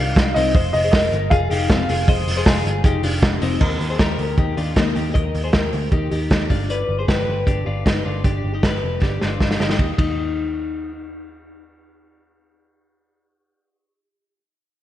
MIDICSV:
0, 0, Header, 1, 5, 480
1, 0, Start_track
1, 0, Key_signature, -3, "major"
1, 0, Tempo, 383632
1, 687, Time_signature, 4, 2, 24, 8
1, 6929, Tempo, 387097
1, 18449, End_track
2, 0, Start_track
2, 0, Title_t, "Upright piano"
2, 0, Program_c, 0, 0
2, 0, Note_on_c, 0, 77, 109
2, 430, Note_on_c, 0, 75, 94
2, 461, Note_off_c, 0, 77, 0
2, 661, Note_off_c, 0, 75, 0
2, 913, Note_on_c, 0, 75, 96
2, 1127, Note_off_c, 0, 75, 0
2, 1145, Note_on_c, 0, 75, 85
2, 1600, Note_off_c, 0, 75, 0
2, 1631, Note_on_c, 0, 77, 93
2, 3982, Note_off_c, 0, 77, 0
2, 18449, End_track
3, 0, Start_track
3, 0, Title_t, "Clean electric guitar"
3, 0, Program_c, 1, 27
3, 0, Note_on_c, 1, 62, 64
3, 0, Note_on_c, 1, 65, 84
3, 421, Note_off_c, 1, 65, 0
3, 427, Note_off_c, 1, 62, 0
3, 452, Note_on_c, 1, 63, 87
3, 465, Note_on_c, 1, 60, 62
3, 688, Note_on_c, 1, 75, 103
3, 689, Note_off_c, 1, 63, 0
3, 695, Note_off_c, 1, 60, 0
3, 697, Note_on_c, 1, 72, 79
3, 1025, Note_off_c, 1, 75, 0
3, 1030, Note_off_c, 1, 72, 0
3, 1047, Note_on_c, 1, 72, 75
3, 1058, Note_on_c, 1, 68, 57
3, 1160, Note_off_c, 1, 68, 0
3, 1165, Note_on_c, 1, 70, 93
3, 1166, Note_off_c, 1, 72, 0
3, 1177, Note_on_c, 1, 65, 77
3, 1615, Note_off_c, 1, 70, 0
3, 1621, Note_off_c, 1, 65, 0
3, 1648, Note_on_c, 1, 68, 91
3, 1659, Note_on_c, 1, 65, 72
3, 1875, Note_off_c, 1, 68, 0
3, 1880, Note_on_c, 1, 67, 84
3, 1888, Note_off_c, 1, 65, 0
3, 1893, Note_on_c, 1, 63, 67
3, 2121, Note_off_c, 1, 67, 0
3, 2127, Note_off_c, 1, 63, 0
3, 2132, Note_on_c, 1, 65, 91
3, 2143, Note_on_c, 1, 60, 73
3, 2367, Note_off_c, 1, 65, 0
3, 2372, Note_off_c, 1, 60, 0
3, 2373, Note_on_c, 1, 68, 74
3, 2381, Note_on_c, 1, 65, 62
3, 2607, Note_off_c, 1, 68, 0
3, 2610, Note_on_c, 1, 75, 102
3, 2611, Note_off_c, 1, 65, 0
3, 2622, Note_on_c, 1, 72, 81
3, 2943, Note_off_c, 1, 75, 0
3, 2950, Note_off_c, 1, 72, 0
3, 2967, Note_on_c, 1, 72, 75
3, 2974, Note_on_c, 1, 68, 63
3, 3068, Note_off_c, 1, 68, 0
3, 3083, Note_on_c, 1, 68, 86
3, 3084, Note_off_c, 1, 72, 0
3, 3095, Note_on_c, 1, 65, 64
3, 3532, Note_off_c, 1, 68, 0
3, 3538, Note_off_c, 1, 65, 0
3, 3559, Note_on_c, 1, 67, 80
3, 3573, Note_on_c, 1, 63, 65
3, 3797, Note_off_c, 1, 63, 0
3, 3799, Note_off_c, 1, 67, 0
3, 3802, Note_on_c, 1, 65, 74
3, 3812, Note_on_c, 1, 62, 59
3, 4252, Note_off_c, 1, 65, 0
3, 4257, Note_off_c, 1, 62, 0
3, 4279, Note_on_c, 1, 63, 72
3, 4291, Note_on_c, 1, 60, 57
3, 4514, Note_on_c, 1, 75, 79
3, 4519, Note_off_c, 1, 63, 0
3, 4525, Note_off_c, 1, 60, 0
3, 4528, Note_on_c, 1, 70, 69
3, 4855, Note_off_c, 1, 75, 0
3, 4863, Note_off_c, 1, 70, 0
3, 4882, Note_on_c, 1, 72, 62
3, 4888, Note_on_c, 1, 68, 50
3, 5000, Note_off_c, 1, 72, 0
3, 5004, Note_off_c, 1, 68, 0
3, 5005, Note_on_c, 1, 70, 81
3, 5015, Note_on_c, 1, 67, 61
3, 5455, Note_off_c, 1, 70, 0
3, 5460, Note_off_c, 1, 67, 0
3, 5484, Note_on_c, 1, 67, 69
3, 5492, Note_on_c, 1, 63, 58
3, 5716, Note_off_c, 1, 67, 0
3, 5721, Note_on_c, 1, 65, 71
3, 5722, Note_off_c, 1, 63, 0
3, 5727, Note_on_c, 1, 62, 54
3, 5959, Note_off_c, 1, 62, 0
3, 5963, Note_off_c, 1, 65, 0
3, 5964, Note_on_c, 1, 63, 78
3, 5973, Note_on_c, 1, 58, 65
3, 6196, Note_off_c, 1, 63, 0
3, 6199, Note_on_c, 1, 67, 63
3, 6209, Note_off_c, 1, 58, 0
3, 6211, Note_on_c, 1, 63, 53
3, 6432, Note_on_c, 1, 75, 81
3, 6438, Note_off_c, 1, 67, 0
3, 6443, Note_on_c, 1, 70, 67
3, 6449, Note_off_c, 1, 63, 0
3, 6779, Note_off_c, 1, 75, 0
3, 6785, Note_off_c, 1, 70, 0
3, 6805, Note_on_c, 1, 72, 65
3, 6813, Note_on_c, 1, 68, 51
3, 6920, Note_off_c, 1, 68, 0
3, 6925, Note_on_c, 1, 70, 73
3, 6927, Note_off_c, 1, 72, 0
3, 6934, Note_on_c, 1, 67, 54
3, 7376, Note_off_c, 1, 70, 0
3, 7381, Note_off_c, 1, 67, 0
3, 7399, Note_on_c, 1, 67, 68
3, 7410, Note_on_c, 1, 63, 56
3, 7631, Note_off_c, 1, 67, 0
3, 7641, Note_off_c, 1, 63, 0
3, 7646, Note_on_c, 1, 67, 67
3, 7656, Note_on_c, 1, 63, 51
3, 8096, Note_off_c, 1, 67, 0
3, 8102, Note_off_c, 1, 63, 0
3, 8126, Note_on_c, 1, 65, 66
3, 8134, Note_on_c, 1, 62, 53
3, 8365, Note_off_c, 1, 65, 0
3, 8369, Note_off_c, 1, 62, 0
3, 8372, Note_on_c, 1, 74, 81
3, 8383, Note_on_c, 1, 71, 65
3, 8707, Note_off_c, 1, 74, 0
3, 8713, Note_off_c, 1, 71, 0
3, 8725, Note_on_c, 1, 72, 56
3, 8735, Note_on_c, 1, 68, 47
3, 8842, Note_off_c, 1, 72, 0
3, 8847, Note_on_c, 1, 71, 82
3, 8850, Note_off_c, 1, 68, 0
3, 8858, Note_on_c, 1, 67, 62
3, 9296, Note_off_c, 1, 71, 0
3, 9302, Note_off_c, 1, 67, 0
3, 9325, Note_on_c, 1, 67, 69
3, 9335, Note_on_c, 1, 62, 59
3, 9555, Note_off_c, 1, 62, 0
3, 9558, Note_off_c, 1, 67, 0
3, 9563, Note_on_c, 1, 65, 67
3, 9570, Note_on_c, 1, 62, 55
3, 9801, Note_off_c, 1, 62, 0
3, 9803, Note_off_c, 1, 65, 0
3, 9806, Note_on_c, 1, 63, 78
3, 9816, Note_on_c, 1, 59, 61
3, 10044, Note_off_c, 1, 59, 0
3, 10045, Note_off_c, 1, 63, 0
3, 10049, Note_on_c, 1, 65, 64
3, 10056, Note_on_c, 1, 62, 51
3, 10284, Note_off_c, 1, 62, 0
3, 10285, Note_off_c, 1, 65, 0
3, 10290, Note_on_c, 1, 67, 79
3, 10298, Note_on_c, 1, 62, 65
3, 10625, Note_off_c, 1, 67, 0
3, 10629, Note_off_c, 1, 62, 0
3, 10648, Note_on_c, 1, 67, 62
3, 10659, Note_on_c, 1, 63, 49
3, 10765, Note_off_c, 1, 67, 0
3, 10770, Note_on_c, 1, 71, 66
3, 10771, Note_off_c, 1, 63, 0
3, 10781, Note_on_c, 1, 67, 49
3, 11218, Note_off_c, 1, 71, 0
3, 11224, Note_off_c, 1, 67, 0
3, 11250, Note_on_c, 1, 67, 68
3, 11260, Note_on_c, 1, 62, 47
3, 11484, Note_off_c, 1, 62, 0
3, 11485, Note_off_c, 1, 67, 0
3, 11490, Note_on_c, 1, 65, 59
3, 11499, Note_on_c, 1, 62, 51
3, 11938, Note_off_c, 1, 65, 0
3, 11943, Note_off_c, 1, 62, 0
3, 11962, Note_on_c, 1, 67, 56
3, 11973, Note_on_c, 1, 63, 44
3, 12183, Note_off_c, 1, 63, 0
3, 12198, Note_on_c, 1, 63, 65
3, 12202, Note_off_c, 1, 67, 0
3, 12334, Note_off_c, 1, 63, 0
3, 12441, Note_on_c, 1, 63, 66
3, 13593, Note_off_c, 1, 63, 0
3, 18449, End_track
4, 0, Start_track
4, 0, Title_t, "Picked electric bass"
4, 0, Program_c, 2, 34
4, 0, Note_on_c, 2, 36, 104
4, 171, Note_off_c, 2, 36, 0
4, 206, Note_on_c, 2, 36, 108
4, 403, Note_off_c, 2, 36, 0
4, 454, Note_on_c, 2, 36, 98
4, 648, Note_off_c, 2, 36, 0
4, 686, Note_on_c, 2, 29, 120
4, 883, Note_off_c, 2, 29, 0
4, 935, Note_on_c, 2, 29, 102
4, 1127, Note_off_c, 2, 29, 0
4, 1166, Note_on_c, 2, 29, 113
4, 1362, Note_off_c, 2, 29, 0
4, 1404, Note_on_c, 2, 31, 106
4, 1601, Note_off_c, 2, 31, 0
4, 1646, Note_on_c, 2, 29, 107
4, 1842, Note_off_c, 2, 29, 0
4, 1890, Note_on_c, 2, 29, 99
4, 2083, Note_off_c, 2, 29, 0
4, 2124, Note_on_c, 2, 29, 116
4, 2320, Note_off_c, 2, 29, 0
4, 2375, Note_on_c, 2, 29, 101
4, 2566, Note_off_c, 2, 29, 0
4, 2602, Note_on_c, 2, 29, 114
4, 2798, Note_off_c, 2, 29, 0
4, 2845, Note_on_c, 2, 29, 105
4, 3040, Note_off_c, 2, 29, 0
4, 3080, Note_on_c, 2, 29, 110
4, 3276, Note_off_c, 2, 29, 0
4, 3319, Note_on_c, 2, 31, 97
4, 3515, Note_off_c, 2, 31, 0
4, 3557, Note_on_c, 2, 29, 105
4, 3754, Note_off_c, 2, 29, 0
4, 3784, Note_on_c, 2, 29, 106
4, 3987, Note_off_c, 2, 29, 0
4, 4035, Note_on_c, 2, 29, 110
4, 4233, Note_off_c, 2, 29, 0
4, 4271, Note_on_c, 2, 29, 94
4, 4471, Note_off_c, 2, 29, 0
4, 4519, Note_on_c, 2, 39, 97
4, 4716, Note_off_c, 2, 39, 0
4, 4754, Note_on_c, 2, 39, 85
4, 4953, Note_off_c, 2, 39, 0
4, 4999, Note_on_c, 2, 39, 89
4, 5197, Note_off_c, 2, 39, 0
4, 5237, Note_on_c, 2, 38, 85
4, 5436, Note_off_c, 2, 38, 0
4, 5477, Note_on_c, 2, 39, 101
4, 5676, Note_off_c, 2, 39, 0
4, 5726, Note_on_c, 2, 39, 76
4, 5922, Note_off_c, 2, 39, 0
4, 5958, Note_on_c, 2, 39, 86
4, 6158, Note_off_c, 2, 39, 0
4, 6207, Note_on_c, 2, 39, 82
4, 6404, Note_off_c, 2, 39, 0
4, 6449, Note_on_c, 2, 39, 95
4, 6645, Note_off_c, 2, 39, 0
4, 6689, Note_on_c, 2, 39, 90
4, 6886, Note_off_c, 2, 39, 0
4, 6927, Note_on_c, 2, 39, 86
4, 7124, Note_off_c, 2, 39, 0
4, 7171, Note_on_c, 2, 38, 85
4, 7366, Note_off_c, 2, 38, 0
4, 7399, Note_on_c, 2, 39, 96
4, 7599, Note_off_c, 2, 39, 0
4, 7646, Note_on_c, 2, 39, 87
4, 7842, Note_off_c, 2, 39, 0
4, 7885, Note_on_c, 2, 39, 86
4, 8082, Note_off_c, 2, 39, 0
4, 8127, Note_on_c, 2, 31, 80
4, 8519, Note_off_c, 2, 31, 0
4, 8602, Note_on_c, 2, 31, 88
4, 8800, Note_off_c, 2, 31, 0
4, 8848, Note_on_c, 2, 31, 95
4, 9043, Note_off_c, 2, 31, 0
4, 9088, Note_on_c, 2, 31, 76
4, 9283, Note_off_c, 2, 31, 0
4, 9326, Note_on_c, 2, 31, 86
4, 9522, Note_off_c, 2, 31, 0
4, 9574, Note_on_c, 2, 31, 76
4, 9766, Note_off_c, 2, 31, 0
4, 9812, Note_on_c, 2, 31, 92
4, 10005, Note_off_c, 2, 31, 0
4, 10058, Note_on_c, 2, 31, 84
4, 10248, Note_off_c, 2, 31, 0
4, 10286, Note_on_c, 2, 31, 95
4, 10481, Note_off_c, 2, 31, 0
4, 10534, Note_on_c, 2, 31, 79
4, 10726, Note_off_c, 2, 31, 0
4, 10764, Note_on_c, 2, 31, 80
4, 10960, Note_off_c, 2, 31, 0
4, 11017, Note_on_c, 2, 29, 72
4, 11208, Note_off_c, 2, 29, 0
4, 11245, Note_on_c, 2, 31, 81
4, 11441, Note_off_c, 2, 31, 0
4, 11504, Note_on_c, 2, 31, 74
4, 11692, Note_off_c, 2, 31, 0
4, 11728, Note_on_c, 2, 31, 77
4, 11923, Note_off_c, 2, 31, 0
4, 11976, Note_on_c, 2, 31, 71
4, 12167, Note_off_c, 2, 31, 0
4, 12204, Note_on_c, 2, 39, 82
4, 12338, Note_off_c, 2, 39, 0
4, 12444, Note_on_c, 2, 39, 77
4, 16829, Note_off_c, 2, 39, 0
4, 18449, End_track
5, 0, Start_track
5, 0, Title_t, "Drums"
5, 205, Note_on_c, 9, 36, 121
5, 205, Note_on_c, 9, 46, 75
5, 207, Note_on_c, 9, 44, 74
5, 213, Note_on_c, 9, 38, 127
5, 330, Note_off_c, 9, 36, 0
5, 330, Note_off_c, 9, 46, 0
5, 332, Note_off_c, 9, 44, 0
5, 338, Note_off_c, 9, 38, 0
5, 449, Note_on_c, 9, 44, 67
5, 449, Note_on_c, 9, 46, 70
5, 574, Note_off_c, 9, 44, 0
5, 574, Note_off_c, 9, 46, 0
5, 680, Note_on_c, 9, 44, 68
5, 680, Note_on_c, 9, 46, 80
5, 684, Note_on_c, 9, 36, 127
5, 805, Note_off_c, 9, 44, 0
5, 806, Note_off_c, 9, 46, 0
5, 809, Note_off_c, 9, 36, 0
5, 920, Note_on_c, 9, 44, 73
5, 923, Note_on_c, 9, 46, 82
5, 1046, Note_off_c, 9, 44, 0
5, 1049, Note_off_c, 9, 46, 0
5, 1164, Note_on_c, 9, 36, 121
5, 1164, Note_on_c, 9, 38, 127
5, 1165, Note_on_c, 9, 44, 71
5, 1172, Note_on_c, 9, 46, 74
5, 1289, Note_off_c, 9, 36, 0
5, 1289, Note_off_c, 9, 38, 0
5, 1290, Note_off_c, 9, 44, 0
5, 1297, Note_off_c, 9, 46, 0
5, 1401, Note_on_c, 9, 46, 66
5, 1403, Note_on_c, 9, 44, 69
5, 1526, Note_off_c, 9, 46, 0
5, 1528, Note_off_c, 9, 44, 0
5, 1641, Note_on_c, 9, 44, 70
5, 1641, Note_on_c, 9, 46, 81
5, 1642, Note_on_c, 9, 36, 123
5, 1766, Note_off_c, 9, 44, 0
5, 1766, Note_off_c, 9, 46, 0
5, 1767, Note_off_c, 9, 36, 0
5, 1887, Note_on_c, 9, 44, 70
5, 1888, Note_on_c, 9, 46, 76
5, 2012, Note_off_c, 9, 44, 0
5, 2013, Note_off_c, 9, 46, 0
5, 2119, Note_on_c, 9, 46, 80
5, 2121, Note_on_c, 9, 44, 71
5, 2122, Note_on_c, 9, 36, 118
5, 2127, Note_on_c, 9, 38, 127
5, 2245, Note_off_c, 9, 46, 0
5, 2246, Note_off_c, 9, 44, 0
5, 2247, Note_off_c, 9, 36, 0
5, 2252, Note_off_c, 9, 38, 0
5, 2364, Note_on_c, 9, 44, 69
5, 2364, Note_on_c, 9, 46, 65
5, 2489, Note_off_c, 9, 44, 0
5, 2489, Note_off_c, 9, 46, 0
5, 2603, Note_on_c, 9, 36, 125
5, 2606, Note_on_c, 9, 44, 74
5, 2606, Note_on_c, 9, 46, 86
5, 2728, Note_off_c, 9, 36, 0
5, 2731, Note_off_c, 9, 44, 0
5, 2731, Note_off_c, 9, 46, 0
5, 2847, Note_on_c, 9, 44, 76
5, 2850, Note_on_c, 9, 46, 84
5, 2972, Note_off_c, 9, 44, 0
5, 2975, Note_off_c, 9, 46, 0
5, 3080, Note_on_c, 9, 38, 123
5, 3080, Note_on_c, 9, 44, 75
5, 3082, Note_on_c, 9, 36, 123
5, 3088, Note_on_c, 9, 46, 78
5, 3205, Note_off_c, 9, 38, 0
5, 3205, Note_off_c, 9, 44, 0
5, 3207, Note_off_c, 9, 36, 0
5, 3213, Note_off_c, 9, 46, 0
5, 3321, Note_on_c, 9, 46, 67
5, 3324, Note_on_c, 9, 44, 69
5, 3447, Note_off_c, 9, 46, 0
5, 3449, Note_off_c, 9, 44, 0
5, 3553, Note_on_c, 9, 44, 72
5, 3553, Note_on_c, 9, 46, 79
5, 3554, Note_on_c, 9, 36, 127
5, 3678, Note_off_c, 9, 44, 0
5, 3678, Note_off_c, 9, 46, 0
5, 3679, Note_off_c, 9, 36, 0
5, 3794, Note_on_c, 9, 44, 76
5, 3794, Note_on_c, 9, 46, 78
5, 3919, Note_off_c, 9, 44, 0
5, 3919, Note_off_c, 9, 46, 0
5, 4031, Note_on_c, 9, 46, 74
5, 4033, Note_on_c, 9, 44, 74
5, 4036, Note_on_c, 9, 36, 117
5, 4039, Note_on_c, 9, 38, 127
5, 4156, Note_off_c, 9, 46, 0
5, 4158, Note_off_c, 9, 44, 0
5, 4161, Note_off_c, 9, 36, 0
5, 4164, Note_off_c, 9, 38, 0
5, 4273, Note_on_c, 9, 44, 68
5, 4273, Note_on_c, 9, 46, 73
5, 4398, Note_off_c, 9, 44, 0
5, 4398, Note_off_c, 9, 46, 0
5, 4512, Note_on_c, 9, 49, 81
5, 4517, Note_on_c, 9, 36, 113
5, 4637, Note_off_c, 9, 49, 0
5, 4642, Note_off_c, 9, 36, 0
5, 4760, Note_on_c, 9, 46, 68
5, 4885, Note_off_c, 9, 46, 0
5, 4997, Note_on_c, 9, 38, 108
5, 4999, Note_on_c, 9, 36, 107
5, 5005, Note_on_c, 9, 42, 62
5, 5122, Note_off_c, 9, 38, 0
5, 5124, Note_off_c, 9, 36, 0
5, 5130, Note_off_c, 9, 42, 0
5, 5236, Note_on_c, 9, 46, 54
5, 5361, Note_off_c, 9, 46, 0
5, 5476, Note_on_c, 9, 36, 103
5, 5477, Note_on_c, 9, 42, 69
5, 5601, Note_off_c, 9, 36, 0
5, 5602, Note_off_c, 9, 42, 0
5, 5723, Note_on_c, 9, 46, 63
5, 5849, Note_off_c, 9, 46, 0
5, 5957, Note_on_c, 9, 42, 64
5, 5961, Note_on_c, 9, 36, 102
5, 5964, Note_on_c, 9, 38, 109
5, 6082, Note_off_c, 9, 42, 0
5, 6086, Note_off_c, 9, 36, 0
5, 6089, Note_off_c, 9, 38, 0
5, 6203, Note_on_c, 9, 46, 58
5, 6328, Note_off_c, 9, 46, 0
5, 6444, Note_on_c, 9, 36, 108
5, 6449, Note_on_c, 9, 42, 69
5, 6569, Note_off_c, 9, 36, 0
5, 6574, Note_off_c, 9, 42, 0
5, 6689, Note_on_c, 9, 46, 67
5, 6814, Note_off_c, 9, 46, 0
5, 6920, Note_on_c, 9, 38, 109
5, 6925, Note_on_c, 9, 36, 102
5, 6928, Note_on_c, 9, 42, 60
5, 7044, Note_off_c, 9, 38, 0
5, 7049, Note_off_c, 9, 36, 0
5, 7052, Note_off_c, 9, 42, 0
5, 7162, Note_on_c, 9, 46, 56
5, 7286, Note_off_c, 9, 46, 0
5, 7399, Note_on_c, 9, 42, 63
5, 7401, Note_on_c, 9, 36, 102
5, 7523, Note_off_c, 9, 42, 0
5, 7525, Note_off_c, 9, 36, 0
5, 7645, Note_on_c, 9, 46, 64
5, 7769, Note_off_c, 9, 46, 0
5, 7880, Note_on_c, 9, 42, 60
5, 7884, Note_on_c, 9, 36, 96
5, 7888, Note_on_c, 9, 38, 102
5, 8004, Note_off_c, 9, 42, 0
5, 8008, Note_off_c, 9, 36, 0
5, 8012, Note_off_c, 9, 38, 0
5, 8121, Note_on_c, 9, 46, 59
5, 8124, Note_on_c, 9, 36, 90
5, 8245, Note_off_c, 9, 46, 0
5, 8248, Note_off_c, 9, 36, 0
5, 8367, Note_on_c, 9, 42, 69
5, 8491, Note_off_c, 9, 42, 0
5, 8846, Note_on_c, 9, 36, 101
5, 8850, Note_on_c, 9, 38, 105
5, 8857, Note_on_c, 9, 42, 63
5, 8970, Note_off_c, 9, 36, 0
5, 8974, Note_off_c, 9, 38, 0
5, 8981, Note_off_c, 9, 42, 0
5, 9323, Note_on_c, 9, 36, 101
5, 9326, Note_on_c, 9, 42, 61
5, 9447, Note_off_c, 9, 36, 0
5, 9450, Note_off_c, 9, 42, 0
5, 9807, Note_on_c, 9, 36, 96
5, 9810, Note_on_c, 9, 42, 63
5, 9818, Note_on_c, 9, 38, 98
5, 9931, Note_off_c, 9, 36, 0
5, 9934, Note_off_c, 9, 42, 0
5, 9942, Note_off_c, 9, 38, 0
5, 10284, Note_on_c, 9, 36, 99
5, 10285, Note_on_c, 9, 42, 68
5, 10408, Note_off_c, 9, 36, 0
5, 10409, Note_off_c, 9, 42, 0
5, 10765, Note_on_c, 9, 36, 100
5, 10766, Note_on_c, 9, 38, 109
5, 10773, Note_on_c, 9, 42, 54
5, 10889, Note_off_c, 9, 36, 0
5, 10890, Note_off_c, 9, 38, 0
5, 10897, Note_off_c, 9, 42, 0
5, 11243, Note_on_c, 9, 36, 99
5, 11250, Note_on_c, 9, 38, 45
5, 11367, Note_off_c, 9, 36, 0
5, 11374, Note_off_c, 9, 38, 0
5, 11487, Note_on_c, 9, 38, 58
5, 11611, Note_off_c, 9, 38, 0
5, 11724, Note_on_c, 9, 36, 91
5, 11725, Note_on_c, 9, 38, 67
5, 11848, Note_off_c, 9, 36, 0
5, 11849, Note_off_c, 9, 38, 0
5, 11852, Note_on_c, 9, 38, 67
5, 11968, Note_off_c, 9, 38, 0
5, 11968, Note_on_c, 9, 38, 76
5, 12086, Note_off_c, 9, 38, 0
5, 12086, Note_on_c, 9, 38, 73
5, 12202, Note_on_c, 9, 36, 90
5, 12203, Note_on_c, 9, 51, 66
5, 12210, Note_off_c, 9, 38, 0
5, 12326, Note_off_c, 9, 36, 0
5, 12327, Note_off_c, 9, 51, 0
5, 12443, Note_on_c, 9, 36, 93
5, 12445, Note_on_c, 9, 51, 71
5, 12567, Note_off_c, 9, 36, 0
5, 12569, Note_off_c, 9, 51, 0
5, 18449, End_track
0, 0, End_of_file